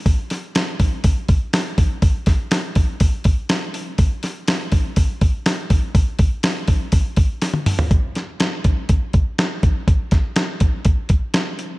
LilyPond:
\new DrumStaff \with { instrumentName = "Drums" } \drummode { \time 4/4 \tempo 4 = 122 <hho bd>8 <hho sn>8 <hho sn>8 <hho bd>8 <hho bd>8 <hho bd>8 <hho sn>8 <hho bd>8 | <hho bd>8 <hho bd sn>8 <hho sn>8 <hho bd>8 <hho bd>8 <hho bd>8 <hho sn>8 hho8 | <hho bd>8 <hho sn>8 <hho sn>8 <hho bd>8 <hho bd>8 <hho bd>8 <hho sn>8 <hho bd>8 | <hho bd>8 <hho bd>8 <hho sn>8 <hho bd>8 <hho bd>8 <hho bd>8 <hho sn>16 tommh16 <hho toml>16 tomfh16 |
<hh bd>8 <hh sn>8 <hh sn>8 <hh bd>8 <hh bd>8 <hh bd>8 <hh sn>8 <hh bd>8 | <hh bd>8 <hh bd sn>8 <hh sn>8 <hh bd>8 <hh bd>8 <hh bd>8 <hh sn>8 hh8 | }